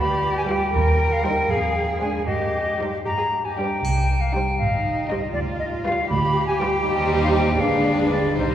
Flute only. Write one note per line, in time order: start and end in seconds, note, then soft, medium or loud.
0.00 0.36 B5 medium
0.37 0.43 G#5 medium
0.48 1.14 G5 medium
1.12 1.25 F5 medium
1.24 1.52 G5 medium
1.50 2.00 F5 medium
2.01 2.26 G#5 medium
2.26 2.81 D#5 medium
3.05 3.47 A#5 medium
3.45 3.56 G#5 soft
3.56 4.22 G5 medium
4.21 4.35 F5 medium
4.33 4.58 G5 medium
4.58 5.08 F5 medium
5.08 5.14 D#5 medium
5.33 5.39 D5 medium
5.59 5.65 D#5 medium
5.84 6.09 F5 medium
6.09 6.46 B5 medium
6.47 6.61 G#5 medium
6.59 7.22 G5 medium
7.23 7.29 F5 medium
7.35 7.62 G5 medium
7.60 8.11 F5 medium
8.12 8.38 D5 medium
8.38 8.55 C5 soft